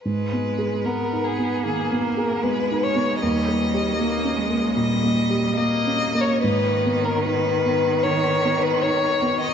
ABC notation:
X:1
M:4/4
L:1/16
Q:1/4=76
K:G#m
V:1 name="Violin"
B4 A2 G2 G2 A2 B2 c2 | d8 d4 d3 c | B3 A B4 c3 B c3 d |]
V:2 name="Grand piano"
(3G,,2 B,2 G2 (3B,2 D2 B,2 (3D,2 B,2 G2 (3B,2 D2 B,2 | (3D,,2 A,2 =G2 (3A,2 C2 A,2 (3A,,2 A,2 G2 (3A,2 C2 A,2 | G,,2 B,2 D2 B,2 D,2 B,2 D2 B,2 |]
V:3 name="Cello" clef=bass
G,4 B,4 A,4 G,4 | =G,4 A,2 ^G,2 =G,4 A,3 z | D,16 |]